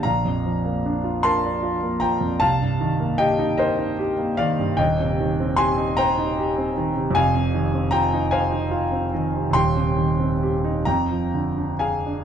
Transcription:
<<
  \new Staff \with { instrumentName = "Grand piano" } { \time 6/8 \key c \dorian \tempo 4. = 51 <f'' bes''>4. <a'' c'''>4 <g'' bes''>8 | <f'' a''>4 <ees'' g''>8 <c'' ees''>8 r8 <d'' f''>8 | \key c \minor <ees'' g''>4 <aes'' c'''>8 <g'' bes''>4. | <f'' aes''>4 <g'' bes''>8 <f'' aes''>4 r8 |
<g'' c'''>4. <g'' bes''>4 <f'' aes''>8 | }
  \new Staff \with { instrumentName = "Grand piano" } { \time 6/8 \key c \dorian bes,,16 f,16 f16 bes16 d'16 f'16 bes'16 d''16 f'16 bes16 f16 f,16 | c,16 g,16 ees16 bes16 g'16 ees'16 bes'16 ees'16 g'16 bes16 ees16 g,16 | \key c \minor <ees,, ees,>16 c16 ees16 c'16 g'16 ees'16 c''16 ees'16 g'16 c'16 ees16 c16 | <f,, f,>16 c16 ees16 c'16 f'16 ees'16 c''16 ees'16 f'16 c'16 ees16 c16 |
<ees,, ees,>16 c16 ees16 c'16 g'16 ees'16 f,16 f16 d16 d'16 aes'16 d'16 | }
>>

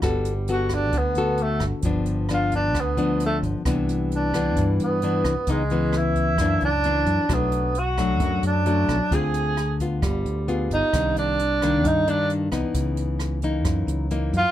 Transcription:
<<
  \new Staff \with { instrumentName = "Tenor saxophone" } { \time 4/4 \key g \major \tempo 4 = 132 r4 fis'8 d'8 b4 a8 r8 | r4 f'8 d'8 b4 a8 r8 | r4 d'4. b4. | gis4 e'4. d'4. |
b4 fis'4. d'4. | aes'4. r2 ees'8~ | ees'8 d'4. ees'8 d'8 r4 | r2. r8 f'8 | }
  \new Staff \with { instrumentName = "Nylon-string guitar" } { \time 4/4 \key g \major << { <b fis' a'>8 r8 <b fis' a'>4 r8 <b fis' a'>4. | <f b d'>4 <f b d'>4 r8 <f b d'>4. | <e b d'>4. <e b d'>4. <e b d'>8 r8 | <e b dis'>8 <e b>4. <e ais d'>8 r8 <e ais d'>4 |
<fis a d'>4 r8 <fis a d'>4. <fis a d'>8 r8 | <c' f' aes'>4 r8 <b f'>4. <b f' aes'>4 | <ees bes d'>4 r8 <ees bes d'>4 <ees bes d'>4 <e b ees'>8~ | <e b ees'>4. <e bes dis'>4. <e ais dis'>8 r8 | } \\ { g2 d2 | g,2 d2 | c2 g,2 | cis2 fis,2 |
b,2 fis,2 | d2 g2 | c2 g,2 | cis2 fis,2 | } >> }
  \new Staff \with { instrumentName = "Fingered electric bass" } { \clef bass \time 4/4 \key g \major g,,2 d,8 d,4 g,,16 r16 | g,,2 d,8 d,4 g,,16 r16 | c,2 g,8 g,4 c,16 r16 | cis,2 fis,8 cis,4 fis,16 r16 |
b,,2 fis,8 fis,4 b,,16 r16 | d,2 g,,8 d,4 g,,16 r16 | c,2 g,8 g,4 c,16 r16 | cis,2 fis,8 cis,4 fis,16 r16 | }
  \new DrumStaff \with { instrumentName = "Drums" } \drummode { \time 4/4 <hh bd ss>8 hh8 hh8 <hh bd ss>8 <hh bd>8 hh8 hh8 <hh bd ss>8 | <hh bd>8 hh8 <hh ss>8 <hh bd>8 <hh bd ss>8 hh8 hh8 <hh bd>8 | <hh bd ss>8 hh8 hh8 <hh bd ss>8 <hh bd>8 hh8 hh8 <hh bd ss>8 | <hh bd>8 hh8 <hh ss>8 <hh bd>8 <hh bd ss>8 hh8 hh8 <hh bd>8 |
<hh bd ss>8 hh8 hh8 <hh bd ss>8 <hh bd>8 hh8 hh8 <hh bd ss>8 | <hh bd>8 hh8 <hh ss>8 <hh bd>8 <hh bd ss>8 hh8 hh8 <hh bd>8 | <hh bd ss>8 hh8 hh8 <hh bd ss>8 <hh bd>8 hh8 hh8 <hh bd ss>8 | <hh bd>8 hh8 <hh ss>8 <hh bd>8 <hh bd ss>8 hh8 hh8 <hh bd>8 | }
>>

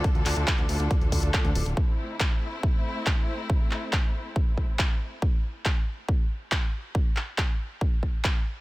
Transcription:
<<
  \new Staff \with { instrumentName = "String section" } { \time 4/4 \key a \minor \tempo 4 = 139 <d d' f' a'>1 | <a c' e'>1~ | <a c' e'>1 | r1 |
r1 | }
  \new Staff \with { instrumentName = "Analog synth bass" } { \clef bass \time 4/4 \key a \minor r16 d,16 d,16 d,16 r16 d,16 d,16 d,16 r16 d,16 d,16 d,16 r16 d,16 d,,16 d,,16 | r1 | r1 | r1 |
r1 | }
  \new DrumStaff \with { instrumentName = "Drums" } \drummode { \time 4/4 <hh bd>16 hh16 <hc hho>16 hh16 <hc hh bd>16 hh16 hho16 hh16 <hh bd>16 hh16 <hho bd>16 hh16 <hc hh bd>16 hh16 hho16 hh16 | bd4 <hc bd>4 bd4 <hc bd>4 | bd8 hc8 <hc bd>4 bd8 bd8 <hc bd>4 | bd4 <hc bd>4 bd4 <hc bd>4 |
bd8 hc8 <hc bd>4 bd8 bd8 <hc bd>4 | }
>>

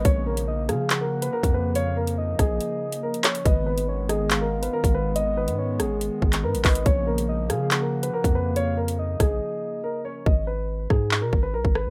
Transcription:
<<
  \new Staff \with { instrumentName = "Soft synth lead" } { \time 4/4 \key bes \phrygian \tempo 4 = 141 des''4 ees''8 f''8 ges''2 | f''4 ees''2~ ees''8 des''8 | ces''4 des''8 ees''8 f''2 | ees''4 des''4 r4 ces''8 ees''8 |
des''4 ees''8 f''8 ges''2 | f''4 ees''2~ ees''8 des''8 | r1 | }
  \new Staff \with { instrumentName = "Grand piano" } { \time 4/4 \key bes \phrygian des''8 bes'4 aes'8. bes'8 ces''16 bes'8 ces''8 | des''8 bes'4 aes'4. bes'8 des''8 | ees''8 ces''4 aes'8. bes'8 ces''16 bes'8 ces''8 | ees''8 ces''4 aes'4. bes'8 ces''8 |
des''8 bes'4 aes'8. bes'8 ces''16 bes'8 ces''8 | des''8 bes'4 aes'4. bes'8 des''8 | ees''8 ces''4 aes'8. bes'8 ces''16 bes'8 ces''8 | }
  \new Staff \with { instrumentName = "Analog synth pad" } { \clef bass \time 4/4 \key bes \phrygian <des f bes>1~ | <des f bes>1 | <ees aes ces'>1~ | <ees aes ces'>1 |
<des f bes>1~ | <des f bes>1 | r1 | }
  \new Staff \with { instrumentName = "808-style bass" } { \clef bass \time 4/4 \key bes \phrygian bes,,4. des4. r16 f,8.~ | f,4. bes,,8 r2 | aes,,2. r16 aes,,8.~ | aes,,8. aes,8. aes,,8. r16 aes,,8 aes,16 aes,,16 aes,,8 |
bes,,4. des4. r16 f,8.~ | f,4. bes,,8 r2 | aes,,4. aes,8. ces16 aes,,8 ces,16 aes,,8 aes,16 | }
  \new DrumStaff \with { instrumentName = "Drums" } \drummode { \time 4/4 <hh bd>8. hh16 r8 <hh ss>8 <hc hh>8. hh16 r16 <hh bd>8. | hh8. hh16 r8 <hh bd ss>8 hh8. hh16 r16 hh16 <hc hh ss>16 hh16 | <hh bd>8. hh16 r8 <hh ss>8 <hc hh>8. hh16 r16 <hh bd>8. | hh8. hh16 r8 <hh ss>8 hh8 bd16 <hc hh>16 r16 hh16 <hc hho bd>16 hh16 |
<hh bd>8. hh16 r8 <hh ss>8 <hc hh>8. hh16 r16 <hh bd>8. | hh8. hh16 r8 <hh bd ss>8 r4 r4 | bd4 r8 <bd ss>8 hc8 bd8 r16 bd16 ss8 | }
>>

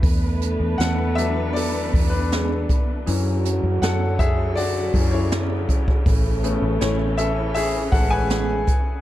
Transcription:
<<
  \new Staff \with { instrumentName = "Upright piano" } { \time 4/4 \key a \major \tempo 4 = 80 r4 <a' fis''>8 <a' e''>8 <a' d''>8. <d' b'>8. r8 | r4 <a' fis''>8 <gis' e''>8 <fis' d''>8. <e' cis''>8. r8 | r4 <e' cis''>8 <a' e''>8 <gis' e''>8 <a' fis''>16 <b' gis''>8. r8 | }
  \new Staff \with { instrumentName = "Upright piano" } { \time 4/4 \key a \major r4. <fis a d'>4. r4 | <e fis cis'>8 r2 <e fis cis'>8 r4 | r8 <a b cis'>4. r2 | }
  \new Staff \with { instrumentName = "French horn section" } { \time 4/4 \key a \major <a a'>2~ <a a'>8 r8 <gis gis'>8 r8 | <fis fis'>2.~ <fis fis'>8 r8 | <a a'>2 r8 <gis gis'>4 r8 | }
  \new Staff \with { instrumentName = "String section" } { \clef bass \time 4/4 \key a \major << { <e b d'>1 | <d fis>1 | <e cis'>1 | } \\ { b'1 | cis1~ | cis1 | } >> }
  \new Staff \with { instrumentName = "Fingered electric bass" } { \clef bass \time 4/4 \key a \major e,8. e,16 e,4. e,4 r8 | fis,8. fis,16 fis,4. fis,4 r8 | a,,8. a,,16 a,,4. a,,4 r8 | }
  \new DrumStaff \with { instrumentName = "Drums" } \drummode { \time 4/4 <hho hhp bd>8 <hho hhp>8 <hho hhp sn>8 <hho hhp>8 <hho hhp>8 <hho hhp bd>8 <hho hhp sn>8 <hho hhp bd>8 | <hho hhp>8 <hho hhp>8 <hho hhp sn>8 <hho hhp bd>8 <hho hhp>8 <hho hhp bd>8 <hho hhp sn>8 <hho hhp bd>16 bd16 | <hho hhp bd>8 <hho hhp>8 <hho hhp sn>8 <hho hhp>8 <hho hhp>8 <hho hhp bd>8 <hho hhp sn>8 <hho hhp bd>8 | }
>>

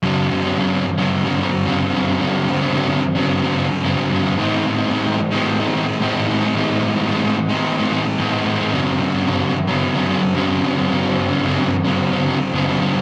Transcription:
<<
  \new Staff \with { instrumentName = "Overdriven electric guitar" } { \time 4/4 \key g \mixolydian \tempo 4 = 110 <g, d g c' d'>8. <g c' d'>16 <g, d g c' d'>8. <g c' d'>8 <g c' d'>16 <d g c' d'>8 <g, d g c' d'>8 <d g c' d'>16 <g c' d'>16 | <g, d g c' d'>8. <g c' d'>16 <g, d g c' d'>8. <g c' d'>8 <g c' d'>16 <d g c' d'>8 <g, d g c' d'>8 <d g c' d'>16 <g c' d'>16 | <a, e a c' e'>8. <a c' e'>16 <a, e a c' e'>8. <a c' e'>8 <a c' e'>16 <e a c' e'>8 <a, e a c' e'>8 <e a c' e'>16 <a c' e'>16 | <a, e a c' e'>8. <a c' e'>16 <a, e a c' e'>8. <a c' e'>8 <a c' e'>16 <e a c' e'>8 <a, e a c' e'>8 <e a c' e'>16 <a c' e'>16 |
<g, d g c' d'>8. <g c' d'>16 <g, d g c' d'>8. <g c' d'>8 <g c' d'>16 <d g c' d'>8 <g, d g c' d'>8 <d g c' d'>16 <g c' d'>16 | <g, d g c' d'>8. <g c' d'>16 <g, d g c' d'>8. <g c' d'>8 <g c' d'>16 <d g c' d'>8 <g, d g c' d'>8 <d g c' d'>16 <g c' d'>16 | }
  \new Staff \with { instrumentName = "Distorted electric guitar" } { \clef bass \time 4/4 \key g \mixolydian <g, d g>8 <g, d g>8 <g, d g>16 <d g>8 <d g>8 <d g>8 <d g>16 <g, d g>16 <d g>16 <g, d g>16 <d g>16 | <g, d g>8 <g, d g>8 <g, d g>16 <d g>8 <d g>8 <d g>8 <d g>16 <g, d g>16 <d g>16 <g, d g>16 <d g>16 | <a, e a>8 <a, e a>8 <a, e a>16 <e a>8 <e a>8 <e a>8 <e a>16 <a, e a>16 <e a>16 <a, e a>16 <e a>16 | <a, e a>8 <a, e a>8 <a, e a>16 <e a>8 <e a>8 <e a>8 <e a>16 <a, e a>16 <e a>16 <a, e a>16 <e a>16 |
<g, d g>8 <g, d g>8 <g, d g>16 <d g>8 <d g>8 <d g>8 <d g>16 <g, d g>16 <d g>16 <g, d g>16 <d g>16 | <g, d g>8 <g, d g>8 <g, d g>16 <d g>8 <d g>8 <d g>8 <d g>16 <g, d g>16 <d g>16 <g, d g>16 <d g>16 | }
  \new Staff \with { instrumentName = "Analog synth pad" } { \clef bass \time 4/4 \key g \mixolydian << { c'1~ | c'1 | c'1~ | c'1~ |
c'1~ | c'1 | } \\ { <g, d>1~ | <g, d>1 | <a, g>1~ | <a, g>1 |
<g, d>1~ | <g, d>1 | } >> }
>>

